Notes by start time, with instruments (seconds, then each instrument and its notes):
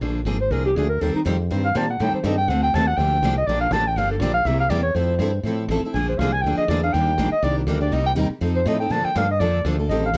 0.01 fretless electric bass A#1, steel-string acoustic guitar D3 F3 A#3 D4 G#4
0.25 fretless electric bass G#1, steel-string acoustic guitar D3 F3 A#3 D4 G#4
0.41 clarinet C5
0.51 fretless electric bass C2, steel-string acoustic guitar D3 F3 A#3 D4 G#4, clarinet A#4
0.66 clarinet G4
0.76 fretless electric bass D2, steel-string acoustic guitar D3 F3 A#3 D4 G#4, clarinet G#4
0.89 clarinet A#4
1.02 fretless electric bass D#2, steel-string acoustic guitar D#3 G3 C4 G4 A#4 C5, clarinet A4
1.15 clarinet D#4, muted fretless electric bass stroke
1.26 fretless electric bass F2, steel-string acoustic guitar D#3 G3 C4 G4 A#4 C5
1.51 fretless electric bass G2, steel-string acoustic guitar D#3 G3 C4 G4 A#4 C5
1.65 clarinet F5
1.75 fretless electric bass A#2, steel-string acoustic guitar D#3 G3 C4 G4 A#4 C5, clarinet A5
1.91 clarinet F#5
2.00 fretless electric bass A2, steel-string acoustic guitar D#3 G3 C4 G4 A4, clarinet G5
2.14 clarinet C5, muted fretless electric bass stroke
2.24 fretless electric bass G2, steel-string acoustic guitar D#3 G3 C4 G4 A4, clarinet D#5
2.38 clarinet G5
2.48 fretless electric bass D2, steel-string acoustic guitar D3 A3 C4 F#4 A4, clarinet F#5
2.63 clarinet G5
2.74 fretless electric bass D#2, steel-string acoustic guitar D3 A3 C4 F#4 A4, clarinet A5
2.87 clarinet F#5
2.97 fretless electric bass D2, steel-string acoustic guitar D3 F3 A#3 D4 G4, clarinet G5
3.22 fretless electric bass C2, steel-string acoustic guitar D3 F3 A#3 D4 G4
3.38 clarinet D#5
3.46 fretless electric bass A#1, steel-string acoustic guitar D3 F3 A#3 D4 G4, clarinet D5
3.60 clarinet F5
3.70 fretless electric bass A1, steel-string acoustic guitar D3 F3 A#3 D4 G4, clarinet A5
3.87 clarinet G5
3.96 fretless electric bass G1, steel-string acoustic guitar D3 F3 A#3 D4 G4, clarinet F5
4.11 clarinet A4
4.20 fretless electric bass A#1, steel-string acoustic guitar D3 F3 A#3 D4 G4, clarinet D5
4.34 clarinet F5
4.45 fretless electric bass C2, steel-string acoustic guitar C3 G3 A#3 E4 G4, clarinet E5
4.60 clarinet F5
4.70 fretless electric bass E2, steel-string acoustic guitar C3 G3 A#3 E4 G4, clarinet D5
4.83 clarinet C#5
4.95 fretless electric bass F2, steel-string acoustic guitar F3 C4 E4 A4, clarinet C5
5.19 fretless electric bass G2, steel-string acoustic guitar F3 C4 E4 A4
5.43 fretless electric bass A2, steel-string acoustic guitar F3 C4 E4 A4
5.68 fretless electric bass A1, steel-string acoustic guitar F3 C4 E4 A4
5.85 steel-string acoustic guitar C4 E4 A4
5.94 fretless electric bass A#1, steel-string acoustic guitar D3 F3 A#3 D4 G#4, clarinet G#5
6.09 clarinet C5
6.18 fretless electric bass C2, steel-string acoustic guitar D3 F3 A#3 D4 G#4, clarinet F5
6.32 clarinet G#5
6.41 fretless electric bass D2, clarinet G5
6.46 steel-string acoustic guitar D3 F3 A#3 D4 G#4
6.57 clarinet D#5, muted fretless electric bass stroke
6.68 fretless electric bass E2, steel-string acoustic guitar D3 F3 A#3 D4 G#4, clarinet D5
6.83 steel-string acoustic guitar A#3 D4 G#4, clarinet F5
6.93 fretless electric bass D#2, steel-string acoustic guitar D#3 G3 A#3 D4 G4, clarinet G5
7.18 fretless electric bass A#1, steel-string acoustic guitar D#3 G3 A#3 D4 G4
7.32 clarinet D#5, muted fretless electric bass stroke
7.43 fretless electric bass C2, steel-string acoustic guitar D#3 G3 A#3 D4 G4, clarinet D5
7.59 clarinet F4
7.67 fretless electric bass D2, steel-string acoustic guitar D#3 G3 A#3 D4 G4, clarinet A#4
7.81 steel-string acoustic guitar A#3 D4 G4, clarinet D5
7.92 fretless electric bass C2, steel-string acoustic guitar C3 G3 A#3 D#4 G4, clarinet D#5
8.07 clarinet G5
8.16 fretless electric bass D#2, steel-string acoustic guitar C3 G3 A#3 D#4 G4
8.30 muted fretless electric bass stroke
8.41 fretless electric bass F2, steel-string acoustic guitar F3 C4 D#4 A4
8.56 clarinet C5
8.66 fretless electric bass A2, steel-string acoustic guitar F3 C4 D#4 A4, clarinet D#5
8.80 steel-string acoustic guitar C4 D#4 A4, clarinet G5
8.90 fretless electric bass A#2, steel-string acoustic guitar D3 F3 A#3 D4 A4, clarinet A5
9.05 clarinet G5, muted fretless electric bass stroke
9.16 fretless electric bass G2, steel-string acoustic guitar D3 F3 A#3 D4 A4, clarinet F5
9.31 clarinet D#5
9.40 fretless electric bass F2, steel-string acoustic guitar D3 F3 A#3 D4 A4, clarinet D5
9.65 fretless electric bass D2, steel-string acoustic guitar D3 F3 A#3 D4 A4
9.79 steel-string acoustic guitar A#3 D4 A4
9.89 fretless electric bass A1, steel-string acoustic guitar D#3 G3 C4 G4 A4, clarinet D#5
10.05 clarinet F5
10.13 fretless electric bass D#2, steel-string acoustic guitar D#3